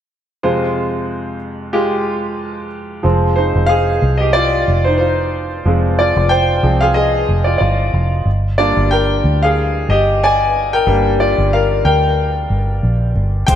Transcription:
0.43 3.00 F2 soft
0.43 3.00 C3 soft
0.43 1.36 G#3 medium
0.43 1.36 F4 medium
0.43 1.36 C5 medium
1.73 2.66 G#3 medium
1.73 2.67 F4 medium
1.73 2.66 G4 medium
3.03 3.52 F1 medium
3.03 3.49 F3 soft
3.03 3.49 G#3 soft
3.03 3.49 C4 medium
3.36 3.68 D#4 soft
3.36 3.70 C5 medium
3.56 3.99 F1 medium
3.66 4.17 G#4 medium
3.66 4.21 F5 medium
4.02 4.64 C2 medium
4.18 4.34 G4 medium
4.18 4.34 D#5 medium
4.33 4.83 F4 medium
4.33 4.86 D5 medium
4.68 5.62 F1 medium
4.84 4.92 D#4 soft
4.84 4.89 C5 medium
4.98 5.48 F4 soft
4.98 5.46 C5 medium
5.65 6.13 F1 medium
5.65 6.62 F3 soft
5.65 6.62 G#3 soft
5.65 6.62 C4 soft
5.99 6.30 F4 medium
5.99 6.32 D5 medium
6.17 6.60 F1 medium
6.29 6.78 C5 medium
6.29 6.82 G5 medium
6.63 7.24 C2 medium
6.63 6.93 F3 soft
6.63 6.93 G#3 soft
6.63 6.93 C4 soft
6.81 6.95 G#4 medium
6.81 6.96 F5 medium
6.94 7.43 G#4 medium
6.94 7.47 D#5 medium
7.29 7.59 F1 medium
7.44 7.52 F4 soft
7.44 7.49 D5 medium
7.58 7.91 G1 medium
7.58 8.08 F4 medium
7.58 8.07 D5 medium
7.93 8.24 F1 medium
8.25 8.73 G1 medium
8.58 9.52 G3 soft
8.58 9.52 A#3 soft
8.58 9.53 D4 medium
8.58 8.89 F4 soft
8.58 8.92 D5 medium
8.77 9.21 G1 medium
8.91 9.39 A#4 medium
8.91 9.44 G5 medium
9.24 9.85 D2 medium
9.43 9.74 G#4 medium
9.43 9.73 F5 medium
9.89 10.83 G1 medium
9.89 10.20 G4 medium
9.89 10.23 D#5 medium
10.24 10.70 D5 medium
10.24 10.75 G#5 medium
10.73 11.03 A#4 medium
10.73 11.03 G5 medium
10.87 11.34 G1 medium
10.87 13.44 G3 medium
10.87 13.44 A#3 soft
10.87 13.45 D4 medium
11.20 11.50 F4 medium
11.20 11.53 D5 medium
11.38 11.82 G1 medium
11.53 11.83 A#4 medium
11.53 11.86 F5 medium
11.85 12.46 D2 medium
11.85 13.12 A#4 medium
11.85 13.11 G5 medium
12.50 12.80 G1 medium
12.83 13.13 A#1 medium
13.15 13.46 G1 medium
13.47 13.55 F1 medium
13.47 13.55 F3 soft
13.47 13.55 G#3 soft
13.47 13.55 C4 soft
13.47 13.55 C5 medium
13.47 13.55 G5 medium
13.47 kick medium
13.47 closed hi-hat medium

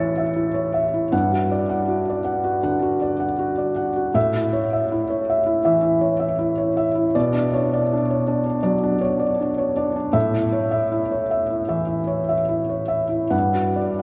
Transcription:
0.00 1.15 A2 medium
0.00 0.22 E3 medium
0.00 0.36 E4 soft
0.00 0.54 C#5 soft
0.00 0.18 E5 medium
0.00 1.08 E6 soft
0.00 1.10 A6 soft
0.00 1.11 C#7 soft
0.18 0.48 E5 soft
0.36 0.67 E4 soft
0.54 0.85 C#5 soft
0.74 1.05 E5 soft
0.94 1.13 E4 soft
1.12 2.61 G2 medium
1.12 1.43 F#5 medium
1.32 1.62 F#4 soft
1.51 1.81 D5 medium
1.69 2.00 F#5 medium
1.88 2.19 F#4 medium
2.10 2.39 D5 soft
2.25 2.56 F#5 soft
2.44 2.75 F#4 soft
2.63 3.24 D3 soft
2.63 2.94 F#5 medium
2.82 3.13 F#4 soft
3.02 3.32 D5 soft
3.20 3.51 F#5 soft
3.39 3.70 F#4 medium
3.58 3.89 D5 soft
3.76 4.07 F#5 medium
3.96 4.15 F#4 soft
4.14 5.60 A2 medium
4.14 4.45 E5 medium
4.35 4.65 E4 soft
4.53 4.83 C#5 soft
4.73 5.02 E5 medium
4.92 5.21 E4 medium
5.10 5.39 C#5 medium
5.30 5.58 E5 soft
5.46 5.76 E4 medium
5.65 6.25 E3 medium
5.65 5.95 E5 medium
5.83 6.13 E4 medium
6.01 6.32 C#5 soft
6.20 6.50 E5 soft
6.39 6.69 E4 medium
6.58 6.88 C#5 medium
6.77 7.07 E5 medium
6.95 7.14 E4 soft
7.15 8.59 B2 medium
7.15 7.45 D5 medium
7.33 7.52 D4 soft
7.54 7.92 D4 soft
7.54 7.82 C#5 medium
7.73 8.02 D5 medium
7.93 8.21 D4 medium
8.11 8.39 C#5 soft
8.27 8.45 D4 soft
8.27 8.56 D5 medium
8.46 8.75 D4 soft
8.63 9.23 F#3 medium
8.63 8.93 D5 medium
8.83 8.99 D4 medium
9.01 9.39 D4 soft
9.01 9.31 C#5 medium
9.19 9.50 D5 medium
9.41 9.70 D4 soft
9.58 9.89 C#5 medium
9.76 9.94 D4 soft
9.76 10.07 D5 soft
9.96 10.15 D4 medium
10.13 11.62 A2 medium
10.13 10.45 E5 medium
10.34 10.65 E4 soft
10.52 10.83 C#5 medium
10.71 11.02 E5 medium
10.92 11.22 E4 medium
11.12 11.41 C#5 soft
11.31 11.61 E5 soft
11.50 11.80 E4 soft
11.69 12.32 E3 soft
11.69 11.99 E5 medium
11.87 12.19 E4 soft
12.07 12.40 C#5 soft
12.29 12.61 E5 soft
12.49 12.82 E4 soft
12.69 13.03 C#5 soft
12.88 13.23 E5 soft
13.09 13.32 E4 soft
13.30 14.02 G2 medium
13.30 13.67 F#5 medium
13.54 13.90 F#4 soft
13.76 14.02 D5 soft

